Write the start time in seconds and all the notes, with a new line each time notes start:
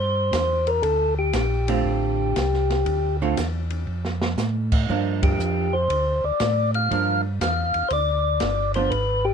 Already playing: G2 C5
0.33 E2, kick, snare, hi-hat pedal, ride
0.67 A#4, ride
0.82 D2 A4, kick, ride
1.19 G4
1.33 A#1, kick, snare, hi-hat pedal, ride
1.68 D3 A3 C4 F4, ride
1.85 A1, kick
2.36 C2, kick, snare, hi-hat pedal, ride
2.54 snare
2.70 snare, ride
2.86 D2, kick, ride
3.22 D3 A3 C4 F4
3.37 E2, kick, snare, hi-hat pedal, ride
3.70 ride
3.87 F2
4.05 snare
4.22 snare
4.37 A2, snare, hi-hat pedal
4.72 kick, crash
4.89 G2 F3 A#3 D4, kick
5.23 G4, kick, ride
5.39 F2, hi-hat pedal
5.73 C5
5.90 D2, kick, ride
6.24 D2 D5
6.40 A2, kick, snare, hi-hat pedal, ride
6.74 F5, ride
6.91 G2 F3 A#3 D4, kick, ride
7.41 E2 F5, kick, snare, hi-hat pedal, ride
7.74 E2, ride
7.88 D2 C5, kick, ride
7.93 D5
8.40 G1, kick, snare, hi-hat pedal, ride
8.74 F3 B3 D4 C5, ride
8.90 G#1 B4, kick, ride
9.25 G4